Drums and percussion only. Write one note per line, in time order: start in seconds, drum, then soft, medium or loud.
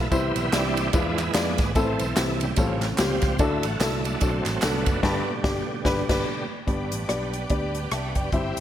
0.12 kick loud
0.12 ride medium
0.12 tambourine medium
0.36 ride medium
0.36 tambourine medium
0.53 snare loud
0.53 clap loud
0.53 ride medium
0.53 tambourine loud
0.77 ride medium
0.77 tambourine soft
0.93 kick loud
0.93 ride medium
0.93 tambourine medium
1.18 clap medium
1.18 ride medium
1.18 tambourine medium
1.34 snare loud
1.34 clap loud
1.34 ride medium
1.34 tambourine medium
1.58 kick loud
1.58 snare soft
1.58 ride medium
1.58 tambourine soft
1.75 kick loud
1.75 ride medium
1.75 tambourine medium
1.99 ride medium
1.99 tambourine medium
2.17 snare loud
2.17 clap loud
2.17 ride medium
2.17 tambourine loud
2.40 ride medium
2.40 tambourine soft
2.56 kick loud
2.56 ride medium
2.56 tambourine medium
2.82 snare soft
2.82 clap medium
2.82 ride medium
2.82 tambourine soft
2.98 snare loud
2.98 clap medium
2.98 ride medium
2.98 tambourine loud
3.22 kick loud
3.22 snare soft
3.22 ride medium
3.22 tambourine medium
3.38 kick loud
3.38 ride medium
3.38 tambourine medium
3.63 ride medium
3.63 tambourine medium
3.81 snare loud
3.81 clap loud
3.81 ride medium
3.81 tambourine loud
4.04 ride medium
4.04 tambourine medium
4.21 kick loud
4.21 ride medium
4.21 tambourine medium
4.46 snare soft
4.46 clap medium
4.46 ride medium
4.46 tambourine soft
4.62 snare loud
4.62 clap medium
4.62 ride medium
4.62 tambourine loud
4.86 kick medium
4.86 ride medium
4.86 tambourine medium
5.03 kick loud
5.03 snare loud
5.03 crash medium
5.44 kick loud
5.44 snare loud
5.85 kick medium
5.85 snare medium
6.09 kick loud
6.09 snare loud
6.09 crash medium
6.68 kick medium
6.68 closed hi-hat medium
6.92 closed hi-hat medium
7.09 cross-stick medium
7.09 closed hi-hat medium
7.33 closed hi-hat medium
7.50 kick medium
7.50 closed hi-hat medium
7.75 closed hi-hat medium
7.91 cross-stick loud
7.91 closed hi-hat medium
8.15 kick medium
8.15 cross-stick soft
8.15 closed hi-hat medium
8.32 kick medium
8.32 closed hi-hat medium
8.57 closed hi-hat medium